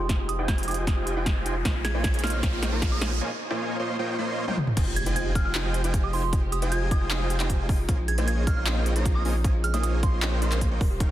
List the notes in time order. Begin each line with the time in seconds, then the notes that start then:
Already playing: F1 F3 G#3 D#4 G4, riser
0.09 F4 C5 D#5 G5 G#5, kick, snare, closed hi-hat
0.19 F4
0.29 G4 D#6, closed hi-hat
0.39 D#4 F4 C5 D#5 G5 G#5
0.48 G#6, kick, snare, closed hi-hat
0.58 G4, closed hi-hat
0.63 closed hi-hat
0.68 D#4 F4 C5 D#5 G5 G#5 D#6, closed hi-hat
0.71 closed hi-hat
0.74 F4, closed hi-hat
0.87 D#4 F4 C5 D#5 G5 G#5, kick, snare, closed hi-hat
0.97 F4
1.07 G4, closed hi-hat
1.16 D#4 F4 C5 D#5 G5 G#5
1.26 F4, kick, snare, closed hi-hat
1.36 G4
1.46 D#4 F4 C5 D#5 G5 G#5, closed hi-hat
1.56 F4
1.65 A#1 C#3 A#3 C4 D#4 F4 C5 C#5 D#5 G#5, kick, snare, closed hi-hat
1.75 F4
1.84 G#4 G#6, snare, closed hi-hat
1.94 A#3 D#4 F4 C5 C#5 D#5 G#5
2.04 G#6, kick, snare, closed hi-hat
2.14 G#4, closed hi-hat
2.19 closed hi-hat
2.23 A#3 D#4 F4 C5 C#5 D#5 C6 F6, snare, closed hi-hat
2.27 closed hi-hat
2.30 F4 F6, closed hi-hat
2.43 A#3 F4 C5 C#5 D#5 G5, kick, snare, closed hi-hat
2.53 F4
2.63 G#4, snare, closed hi-hat
2.72 A#3 D#4 F4 C5 C#5 D#5 A#5
2.82 F4, kick, snare, closed hi-hat
2.92 G#4 D#6
3.01 A#3 D#4 F4 C5 C#5 D#5 G#5, snare, closed hi-hat
3.11 F4
3.21 A#3 F4 C5 C#5 D#5 G#5
3.50 A#3 F4 C5 C#5 D#5 G#5
3.79 A#3 F4 C5 C#5 D#5 C6
3.99 A#3 F4 C5 C#5 D#5 G5
4.18 A#3 F4 C5 C#5 D#5 C6
4.48 A#3 F4 C5 C#5 D#5 G5, high tom
4.57 mid tom
4.67 mid tom
4.77 F1 F3 G#3 D#4 F4 G4 C5 D#5 G5 G#5, kick, closed hi-hat, crash, impact
4.87 F4
4.96 G4 G#6, closed hi-hat
5.06 D#4 F4 C5 D#5 G5 G#5, closed hi-hat
5.16 F4 G#6, closed hi-hat
5.26 G4
5.35 D#4 F4 C5 D#5 G5 G#5 F6, kick, closed hi-hat
5.45 F4 F6
5.55 D#4 F4 C5 D#5 G5 G#5, clap, closed hi-hat
5.65 F4
5.74 G4, closed hi-hat
5.84 D#4 F4 C5 D#5 G5 G#5, closed hi-hat
5.94 F4, kick, closed hi-hat
6.04 G4 D#6
6.13 D#4 F4 C5 D#5 G5 G#5 C6, open hi-hat
6.23 F4 C6
6.33 D#4 F4 C5 D#5 G5 G#5, kick, closed hi-hat
6.43 F4
6.52 G4 D#6, closed hi-hat
6.62 D#4 F4 C5 D#5 G5 G#5, closed hi-hat
6.72 F4 G#6, closed hi-hat
6.82 G4
6.91 D#4 F4 C5 D#5 G5 G#5 D#6, kick, closed hi-hat
7.01 F4
7.11 D#4 F4 C5 D#5 G5 G#5, clap, closed hi-hat
7.21 F4
7.30 G4, closed hi-hat
7.40 D#4 F4 C5 D#5 G5 G#5, clap, closed hi-hat
7.50 F4, kick, closed hi-hat
7.60 G4
7.69 D#4 F4 C5 D#5 G5 G#5, kick, open hi-hat
7.79 F4
7.89 A#1 C#3 A#3 C4 D#4 F4 C5 C#5 D#5 G#5, kick, closed hi-hat
7.98 F4
8.08 G#4 G#6, closed hi-hat
8.18 A#3 D#4 F4 C5 C#5 D#5 G#5, closed hi-hat
8.28 F4 G#6, closed hi-hat
8.37 G#4
8.47 A#3 D#4 F4 C5 C#5 D#5 C6 F6, kick, closed hi-hat
8.57 F4 F6
8.67 A#3 D#4 F4 C5 C#5 D#5 G5, clap, closed hi-hat
8.76 F4
8.86 G#4, closed hi-hat
8.96 A#3 D#4 F4 C5 C#5 D#5 A#5, closed hi-hat
9.05 F4, kick, closed hi-hat
9.15 G#4 D#6
9.25 A#3 D#4 F4 C5 C#5 D#5 G#5, open hi-hat
9.35 F4
9.44 A#3 D#4 F4 C5 C#5 D#5 G#5, kick, closed hi-hat
9.54 F4
9.64 G#4 F6, closed hi-hat
9.74 A#3 D#4 F4 C5 C#5 D#5 G#5 D#6, closed hi-hat
9.83 F4 D#6, closed hi-hat
9.93 G#4
10.03 A#3 D#4 F4 C5 C#5 D#5 C6, kick, closed hi-hat
10.13 F4
10.22 A#3 D#4 F4 C5 C#5 D#5 G5, clap, closed hi-hat
10.32 F4
10.42 A#3 D#4 F4 C5 C#5 D#5 C6, closed hi-hat
10.52 A#4, clap, closed hi-hat
10.61 G#4, kick, closed hi-hat
10.71 A#3 F4 A#4 C5 C#5 D#5 G5
10.81 D#1 D#3 G3 C#4 F4 A#4, kick, open hi-hat
10.91 G4
11.00 D#4 A#4 C#5 F5 G5, kick, closed hi-hat